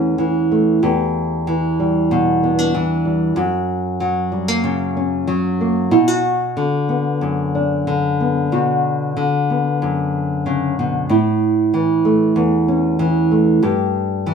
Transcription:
Already playing: E2 E3 A3 C#4 E4
0.18 E3
0.51 A3
0.83 E2 G4
1.47 E3
1.80 G3
2.11 B2
2.43 B3
2.59 D4
2.74 E3
3.05 G3
3.36 F#2 F#4
4.00 F#3
4.32 G3
4.48 A#3
4.64 C#3
4.97 C#4
5.27 F#3
5.61 A#3
5.91 B2 E4
6.08 F#4
6.57 D3
6.89 B3
7.21 F#2
7.55 D4
7.87 D3
8.20 B3
8.52 B2 F#4
9.17 D3
9.50 B3
9.82 F#2
10.46 C#3
10.79 B2
11.09 A2 E4
11.74 E3
12.05 A3
12.36 E2
12.68 C#4
12.99 E3
13.31 A3
13.63 G2 G4
14.26 E3

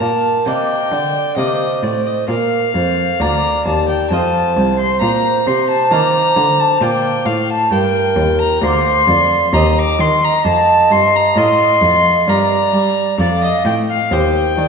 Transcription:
Already playing: A#4
0.00 A#2 A5
0.47 C3 A#3 D4 D5 D#5 G5
0.92 D3 D5
1.37 C3 A#3 D4 C5 D5 D#5
1.83 A2 D5
2.06 D#5
2.28 A#2 A#4 F5
2.75 F2 C5
3.20 D2 A#3 D4 D5 A#5
3.66 D#2 A5
3.89 G5
4.11 F2 C4 F4 C5 D#5 A5
4.57 C2
4.79 C6
5.01 A#2 A#5
5.47 C3 C6
5.70 A5
5.91 D#3 A#3 F4 D5 A#5
6.37 D3
6.59 A5
6.81 A#2 A#3 F4 D5 G5
7.26 A2 F5
7.50 A5
7.71 G2 A#4 G5
8.17 D#2
8.41 A#5
8.62 D2 A#3 G4 C5 D5 C6
9.07 F2 D5
9.53 D#2 C4 G4 D#5 A#5
9.79 D6
9.99 D#3 C6
10.24 A#5
10.45 F2 A5
10.91 G2 C6
11.16 A#5
11.36 A2 F4 A4 D#5 C6
11.82 F2
12.27 G2 D4 A#4 D5 A#5
12.73 G3
13.19 F2 D4 A4 D5 F5
13.44 D#5
13.65 A2 G5
13.90 F5
14.11 D#2 D#4 G4 C5 G5
14.58 D#3 D5

